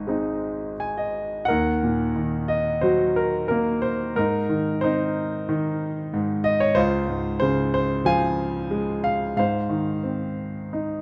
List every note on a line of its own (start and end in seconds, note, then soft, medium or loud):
0.00 1.45 G#1 medium
0.00 1.45 G#2 medium
0.00 0.73 C5 medium
0.00 0.71 D#5 medium
0.07 1.44 G#3 soft
0.07 1.44 C4 soft
0.07 1.45 D#4 soft
0.80 0.96 G#5 medium
0.97 1.45 D#5 medium
1.45 2.79 A#4 medium
1.45 2.10 F#5 medium
1.50 4.14 D#2 medium
1.83 3.13 A#2 soft
2.16 3.47 D#3 soft
2.48 2.83 D#5 medium
2.81 4.13 F#3 medium
2.81 4.13 F#4 medium
2.81 3.17 C5 medium
3.16 3.47 A#4 medium
3.48 4.15 A#3 medium
3.48 3.84 A#4 medium
3.82 4.17 C5 medium
4.16 6.12 G#2 medium
4.16 4.82 D#4 medium
4.16 4.85 A#4 medium
4.49 5.47 D#3 soft
4.81 6.09 C4 medium
4.81 6.41 D#4 medium
4.81 6.49 C5 medium
5.49 6.73 D#3 medium
6.13 6.75 G#2 medium
6.44 6.59 D#5 medium
6.60 6.77 C#5 medium
6.75 9.34 C#2 medium
6.75 8.02 F4 medium
6.75 7.38 C5 loud
7.08 8.34 G#2 medium
7.40 8.68 C#3 medium
7.40 7.72 C5 medium
7.74 8.04 C5 medium
8.05 9.33 F3 medium
8.05 9.02 F5 medium
8.05 8.68 G#5 medium
8.71 9.35 G#3 medium
9.04 9.36 F5 medium
9.37 11.02 G#2 medium
9.37 10.70 C5 medium
9.37 10.69 F5 medium
9.69 11.02 D#3 soft
10.03 11.02 C4 soft
10.73 11.02 D#4 soft